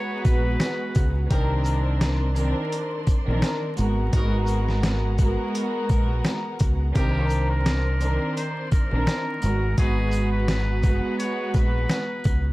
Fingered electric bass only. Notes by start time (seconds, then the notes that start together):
0.25 A#1
0.96 C#2
1.31 C2
3.28 A#1
3.79 G#1
4.13 G#1
5.90 A#1
6.61 C#2
6.96 C2
8.92 A#1
9.43 G#1
9.78 G#1
11.55 A#1
12.26 C#2